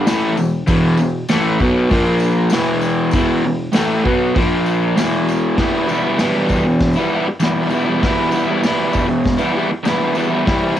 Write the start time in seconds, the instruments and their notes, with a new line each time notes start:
0.07 overdriven electric guitar A2 E3 A3, snare, open hi-hat, tambourine
0.37 overdriven electric guitar E2 B2, tambourine
0.67 overdriven electric guitar E2 B2 E3, kick, open hi-hat, tambourine
0.97 overdriven electric guitar E2 B2, tambourine
1.29 overdriven electric guitar A2 E3 A3, snare, open hi-hat, tambourine
1.60 overdriven electric guitar B2 F#3 B3, kick, tambourine
1.89 overdriven electric guitar A#2 F3 A#3, kick, open hi-hat, tambourine
2.20 tambourine
2.50 overdriven electric guitar E2 B2 E3, snare, open hi-hat, tambourine
2.81 tambourine
3.11 overdriven electric guitar E2 B2, kick, open hi-hat, tambourine
3.15 overdriven electric guitar E3
3.45 overdriven electric guitar E2 B2
3.73 overdriven electric guitar A2 E3 A3, snare, open hi-hat, tambourine
4.04 overdriven electric guitar B2 F#3 B3, kick
4.35 overdriven electric guitar A#2 F3 A#3, kick, open hi-hat, tambourine
4.66 tambourine
4.96 overdriven electric guitar E2 B2 E3, snare, open hi-hat, tambourine
5.28 tambourine
5.57 overdriven electric guitar E2 B2 E3 G3, kick, snare, open hi-hat
5.61 overdriven electric guitar B3 E4
5.88 overdriven electric guitar E3 G3 B3, tambourine
5.93 overdriven electric guitar E4
6.03 overdriven electric guitar G3 B3 E4
6.07 overdriven electric guitar E3
6.18 overdriven electric guitar E2 B2 E3 G3 B3, snare, open hi-hat, tambourine
6.22 overdriven electric guitar E4
6.49 kick, tambourine
6.64 muted overdriven electric guitar stroke, tambourine
6.79 kick, snare, open hi-hat, tambourine
6.93 overdriven electric guitar E4, tambourine
6.98 overdriven electric guitar E3 G3 B3
7.10 overdriven electric guitar E3 G3 B3
7.15 overdriven electric guitar E4
7.27 muted overdriven electric guitar stroke
7.40 overdriven electric guitar E2 B2 E3 G3 B3, snare, open hi-hat, tambourine
7.45 overdriven electric guitar E4
7.70 overdriven electric guitar E3 G3 B3, tambourine
7.75 overdriven electric guitar E4
7.85 overdriven electric guitar G3 B3 E4
7.90 overdriven electric guitar E3
8.00 overdriven electric guitar E2 B2 E3 G3 B3, kick, snare, open hi-hat
8.06 overdriven electric guitar E4
8.30 overdriven electric guitar E3 G3 B3, tambourine
8.35 overdriven electric guitar E4
8.46 overdriven electric guitar B3 E4
8.50 overdriven electric guitar E3 G3
8.61 overdriven electric guitar E2 B2 E3 G3 B3, snare, open hi-hat, tambourine
8.66 overdriven electric guitar E4
8.93 kick, tambourine
9.08 muted overdriven electric guitar stroke, tambourine
9.24 kick, snare, open hi-hat, tambourine
9.37 overdriven electric guitar G3 B3 E4, tambourine
9.42 overdriven electric guitar E3
9.53 overdriven electric guitar E3 G3 B3
9.58 overdriven electric guitar E4
9.71 muted overdriven electric guitar stroke
9.84 overdriven electric guitar E2 B2 E3 G3 B3, snare, open hi-hat, tambourine
9.88 overdriven electric guitar E4
10.14 overdriven electric guitar E3 G3 B3, tambourine
10.19 overdriven electric guitar E4
10.30 overdriven electric guitar G3 B3 E4
10.34 overdriven electric guitar E3
10.44 overdriven electric guitar C3 E3 G3 C4, kick, snare, open hi-hat
10.49 overdriven electric guitar E4
10.75 overdriven electric guitar E3 G3, tambourine